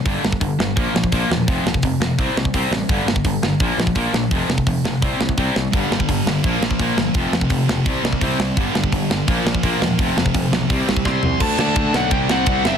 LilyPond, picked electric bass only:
\new Staff \with { instrumentName = "Picked electric bass" } { \clef bass \time 4/4 \key c \major \tempo 4 = 169 g,,8 g,,8 g,,8 g,,8 bes,,8 bes,,8 bes,,8 e,,8 | f,,8 f,,8 f,,8 f,,8 c,8 c,8 c,8 a,,8 | g,,8 g,,8 g,,8 g,,8 bes,,8 bes,,8 bes,,8 bes,,8 | f,,8 f,,8 f,,8 f,,8 c,8 c,8 c,8 c,8 |
g,,8 g,,8 g,,8 g,,8 bes,,8 bes,,8 bes,,8 g,,8 | f,,8 f,,8 f,,8 f,,8 c,8 c,8 c,8 c,8 | g,,8 g,,8 g,,8 g,,8 bes,,8 bes,,8 bes,,8 e,,8 | f,,8 f,,8 f,,8 b,,8 c,8 c,8 c,8 c,8 |
\key d \mixolydian d,8 d,8 d,8 b,,8 c,8 c,8 c,8 fis,,8 | }